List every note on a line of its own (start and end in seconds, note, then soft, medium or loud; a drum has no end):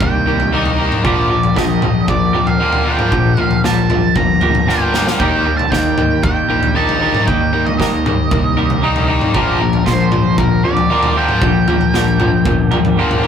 0.00 0.88 C2 medium
0.00 0.52 D#3 medium
0.00 0.25 D#3 medium
0.00 0.28 G3 medium
0.00 0.52 A#3 medium
0.00 0.25 A#3 medium
0.00 0.27 G4 medium
0.00 0.26 A#4 medium
0.00 0.50 G5 medium
0.00 kick loud
0.00 floor tom medium
0.26 0.51 D#3 medium
0.26 0.53 G3 medium
0.26 0.51 A#3 medium
0.26 0.54 G4 medium
0.26 0.55 A#4 medium
0.40 floor tom medium
0.52 0.77 D#3 medium
0.52 0.81 G3 medium
0.52 1.05 A#3 medium
0.52 0.77 A#3 medium
0.52 0.77 D#4 medium
0.52 0.79 G4 medium
0.52 0.78 A#4 medium
0.52 0.90 D#5 medium
0.66 floor tom medium
0.78 1.03 D#3 medium
0.78 1.05 G3 soft
0.78 1.03 A#3 medium
0.78 1.03 D#4 medium
0.78 1.06 G4 medium
0.78 1.06 A#4 medium
0.92 mid tom medium
1.04 1.48 A#1 medium
1.04 1.54 A#2 medium
1.04 1.28 A#2 medium
1.04 1.32 D3 medium
1.04 1.55 F3 medium
1.04 1.28 F3 medium
1.04 1.31 G3 medium
1.04 1.29 A#3 loud
1.04 1.30 G4 medium
1.04 1.30 A#4 medium
1.04 1.54 D5 medium
1.04 kick medium
1.04 floor tom medium
1.29 1.53 A#2 medium
1.29 1.55 D3 medium
1.29 1.54 F3 medium
1.29 1.56 G3 medium
1.29 1.57 G4 medium
1.29 1.57 A#4 medium
1.43 floor tom medium
1.55 2.00 A#1 medium
1.55 2.60 A#2 medium
1.55 1.80 A#2 medium
1.55 2.34 D3 medium
1.55 2.60 F3 medium
1.55 1.80 F3 medium
1.55 2.35 G3 medium
1.55 2.34 G4 medium
1.55 2.33 A#4 medium
1.55 2.05 D#5 medium
1.55 kick medium
1.55 snare medium
1.82 2.06 A#2 medium
1.82 2.06 F3 medium
1.82 floor tom medium
1.82 mid tom medium
2.08 2.30 A#1 medium
2.08 2.32 A#2 medium
2.08 2.32 F3 medium
2.08 2.49 D5 medium
2.08 kick loud
2.08 floor tom medium
2.33 3.01 F2 medium
2.33 2.58 A#2 medium
2.33 2.58 D3 medium
2.33 2.58 F3 medium
2.33 2.60 G3 medium
2.33 2.61 G4 medium
2.33 2.62 A#4 medium
2.47 2.85 F5 loud
2.47 floor tom medium
2.60 2.84 A#2 medium
2.60 2.87 D3 medium
2.60 2.85 F3 medium
2.60 2.87 G3 medium
2.60 2.85 A#3 loud
2.60 2.86 G4 medium
2.60 2.85 A#4 medium
2.73 floor tom medium
2.85 3.11 A#2 medium
2.85 3.11 D3 soft
2.85 3.11 F3 medium
2.85 3.13 G3 medium
2.85 3.11 A#3 medium
2.85 3.13 G4 medium
2.85 3.13 A#4 medium
2.85 3.41 G5 medium
2.99 mid tom medium
3.12 3.34 A#1 loud
3.12 3.62 A#2 medium
3.12 3.36 A#2 medium
3.12 3.39 D3 medium
3.12 3.63 F3 medium
3.12 3.36 F3 medium
3.12 3.39 G3 medium
3.12 3.38 G4 medium
3.12 3.37 A#4 medium
3.12 kick medium
3.12 floor tom medium
3.37 3.62 A#2 medium
3.37 3.63 D3 medium
3.37 3.62 F3 medium
3.37 3.65 G3 medium
3.37 3.65 G4 medium
3.37 3.66 A#4 medium
3.37 3.60 F5 medium
3.37 floor tom medium
3.51 floor tom medium
3.63 4.08 A#1 medium
3.63 4.68 A#2 medium
3.63 3.88 A#2 medium
3.63 4.42 D3 medium
3.63 3.88 F3 medium
3.63 4.68 F3 medium
3.63 4.42 G3 medium
3.63 4.41 G4 medium
3.63 4.40 A#4 medium
3.63 4.13 A5 medium
3.63 snare medium
3.90 4.14 A#2 medium
3.90 4.14 F3 medium
3.90 floor tom medium
3.90 mid tom medium
4.16 5.04 G1 medium
4.16 4.39 A#2 medium
4.16 4.40 F3 medium
4.16 4.65 A#5 loud
4.16 kick medium
4.16 floor tom medium
4.41 4.66 A#2 medium
4.41 4.65 D3 medium
4.41 4.66 F3 medium
4.41 4.67 G3 medium
4.41 4.68 G4 medium
4.41 4.69 A#4 medium
4.41 floor tom medium
4.55 floor tom medium
4.55 mid tom medium
4.66 4.92 A#2 medium
4.66 4.94 D3 medium
4.66 4.93 F3 loud
4.66 4.94 G3 medium
4.66 4.93 A#3 loud
4.66 4.93 G4 medium
4.66 4.92 A#4 medium
4.66 5.05 G5 medium
4.66 snare soft
4.92 5.18 A#2 medium
4.92 5.19 D3 soft
4.92 5.19 F3 medium
4.92 5.20 G3 medium
4.92 5.19 A#3 medium
4.92 5.21 G4 medium
4.92 5.21 A#4 medium
4.92 snare medium
5.07 snare medium
5.19 5.64 D#2 medium
5.19 5.71 D#3 medium
5.19 5.44 D#3 medium
5.19 5.47 G3 medium
5.19 5.71 A#3 medium
5.19 5.45 A#3 medium
5.19 5.45 D#4 medium
5.19 5.46 G4 medium
5.19 5.45 A#4 medium
5.19 5.57 G5 loud
5.19 kick medium
5.19 floor tom medium
5.45 5.69 D#3 medium
5.45 5.72 G3 medium
5.45 5.69 A#3 medium
5.45 5.73 G4 medium
5.45 5.73 A#4 medium
5.57 5.71 A5 medium
5.57 floor tom medium
5.71 6.16 D#2 loud
5.71 6.75 D#3 medium
5.71 5.95 D#3 medium
5.71 6.51 G3 medium
5.71 6.74 A#3 medium
5.71 5.95 A#3 medium
5.71 6.50 G4 medium
5.71 6.48 A#4 medium
5.71 6.23 G5 medium
5.71 kick medium
5.71 snare medium
5.98 6.21 D#3 medium
5.98 6.21 A#3 medium
5.98 floor tom medium
5.98 mid tom medium
6.23 6.46 D#2 medium
6.23 6.47 D#3 medium
6.23 6.47 A#3 medium
6.23 6.76 G5 medium
6.23 kick loud
6.23 floor tom medium
6.49 7.15 A#1 medium
6.49 6.73 D#3 medium
6.49 6.75 G3 medium
6.49 6.73 A#3 medium
6.49 6.76 G4 medium
6.49 6.77 A#4 medium
6.63 floor tom medium
6.75 7.00 D#3 medium
6.75 7.04 G3 medium
6.75 7.27 A#3 medium
6.75 7.00 A#3 loud
6.75 7.00 D#4 loud
6.75 7.03 G4 medium
6.75 7.01 A#4 medium
6.75 7.24 A5 medium
6.89 floor tom medium
7.01 7.26 D#3 medium
7.01 7.28 G3 soft
7.01 7.26 A#3 medium
7.01 7.26 D#4 loud
7.01 7.29 G4 medium
7.01 7.29 A#4 medium
7.15 mid tom medium
7.27 7.49 D#2 loud
7.27 7.51 D#3 medium
7.27 7.77 D#3 medium
7.27 7.55 G3 medium
7.27 7.79 A#3 medium
7.27 7.51 A#3 medium
7.27 7.54 G4 medium
7.27 7.53 A#4 medium
7.27 7.63 G5 medium
7.27 kick medium
7.27 floor tom medium
7.53 7.77 D#3 medium
7.53 7.80 G3 medium
7.53 7.77 A#3 medium
7.53 7.81 G4 medium
7.53 7.81 A#4 medium
7.66 7.77 D#5 medium
7.66 floor tom medium
7.79 8.23 D#2 medium
7.79 8.83 D#3 medium
7.79 8.03 D#3 medium
7.79 8.60 G3 medium
7.79 8.82 A#3 medium
7.79 8.03 A#3 medium
7.79 8.58 G4 medium
7.79 8.57 A#4 medium
7.79 9.05 D#5 medium
7.79 kick medium
7.79 snare medium
8.06 8.29 D#3 medium
8.06 8.29 A#3 medium
8.06 floor tom medium
8.06 mid tom medium
8.31 9.18 C2 medium
8.31 8.55 D#3 medium
8.31 8.55 A#3 medium
8.31 kick loud
8.31 floor tom medium
8.57 8.80 D#3 medium
8.57 8.83 G3 medium
8.57 8.81 A#3 medium
8.57 8.84 G4 medium
8.57 8.84 A#4 medium
8.70 floor tom medium
8.82 9.07 D#3 medium
8.82 9.11 G3 medium
8.82 9.35 A#3 medium
8.82 9.08 A#3 medium
8.82 9.08 D#4 loud
8.82 9.10 G4 medium
8.82 9.08 A#4 medium
8.96 floor tom medium
9.08 9.33 D#3 medium
9.08 9.36 G3 medium
9.08 9.34 A#3 medium
9.08 9.34 D#4 medium
9.08 9.36 G4 soft
9.08 9.37 A#4 medium
9.21 mid tom medium
9.34 9.78 A#1 medium
9.34 9.85 A#2 medium
9.34 9.59 A#2 medium
9.34 9.61 D3 medium
9.34 9.85 F3 medium
9.34 9.60 F3 medium
9.34 9.61 G3 loud
9.34 9.60 A#3 loud
9.34 9.60 G4 medium
9.34 9.86 A#4 medium
9.34 9.59 A#4 medium
9.34 kick medium
9.34 floor tom medium
9.59 9.84 A#2 medium
9.59 9.85 D3 medium
9.59 9.84 F3 medium
9.59 9.86 G3 medium
9.59 9.87 G4 medium
9.59 9.87 A#4 medium
9.73 floor tom medium
9.85 10.30 A#1 loud
9.85 10.89 A#2 medium
9.85 10.10 A#2 medium
9.85 10.65 D3 medium
9.85 10.90 F3 medium
9.85 10.10 F3 medium
9.85 10.65 G3 medium
9.85 10.64 G4 medium
9.85 10.63 A#4 loud
9.85 10.38 C5 medium
9.85 kick medium
9.85 snare medium
10.12 10.36 A#2 medium
10.12 10.36 F3 medium
10.12 floor tom medium
10.12 mid tom medium
10.38 10.60 A#1 medium
10.38 10.62 A#2 medium
10.38 10.62 F3 medium
10.38 10.62 A#4 medium
10.38 kick loud
10.38 floor tom medium
10.63 11.30 F2 medium
10.63 10.88 A#2 medium
10.63 10.88 D3 medium
10.63 10.88 F3 medium
10.63 10.90 G3 medium
10.63 10.91 G4 medium
10.63 10.92 A#4 medium
10.63 11.17 D5 loud
10.77 floor tom medium
10.89 11.15 A#2 medium
10.89 11.17 D3 medium
10.89 11.15 F3 loud
10.89 11.17 G3 medium
10.89 11.15 A#3 medium
10.89 11.16 G4 medium
10.89 11.15 A#4 medium
11.03 floor tom medium
11.16 11.41 A#2 medium
11.16 11.41 D3 soft
11.16 11.41 F3 medium
11.16 11.42 G3 medium
11.16 11.41 A#3 medium
11.16 11.42 G4 medium
11.16 11.43 A#4 medium
11.16 12.94 G5 medium
11.29 mid tom medium
11.41 11.63 A#1 loud
11.41 11.92 A#2 medium
11.41 11.65 A#2 medium
11.41 11.69 D3 medium
11.41 11.92 F3 medium
11.41 11.66 F3 medium
11.41 11.68 G3 medium
11.41 11.67 G4 loud
11.41 11.66 A#4 medium
11.41 kick loud
11.41 floor tom medium
11.67 11.91 A#2 medium
11.67 11.93 D3 medium
11.67 11.91 F3 medium
11.67 11.94 G3 medium
11.67 11.94 G4 medium
11.67 11.95 A#4 medium
11.67 floor tom medium
11.81 floor tom medium
11.93 12.38 A#1 medium
11.93 12.97 A#2 medium
11.93 12.17 A#2 medium
11.93 12.72 D3 loud
11.93 12.97 F3 medium
11.93 12.17 F3 medium
11.93 12.72 G3 medium
11.93 12.71 G4 medium
11.93 12.70 A#4 medium
11.93 snare medium
12.20 12.43 A#2 medium
12.20 12.44 F3 medium
12.20 floor tom medium
12.20 mid tom medium
12.45 13.27 G1 medium
12.45 12.69 A#2 medium
12.45 12.70 F3 medium
12.45 kick loud
12.45 floor tom medium
12.71 12.96 A#2 medium
12.71 12.95 D3 medium
12.71 12.96 F3 medium
12.71 12.96 G3 medium
12.71 12.97 G4 medium
12.71 12.98 A#4 medium
12.71 floor tom medium
12.85 floor tom medium
12.85 mid tom medium
12.96 13.22 A#2 medium
12.96 13.24 D3 medium
12.96 13.23 F3 loud
12.96 13.23 G3 medium
12.96 13.23 A#3 medium
12.96 13.23 G4 medium
12.96 13.22 A#4 medium
13.11 floor tom medium
13.23 13.27 A#2 medium
13.23 13.27 G4 medium
13.23 13.27 A#4 medium
13.23 mid tom medium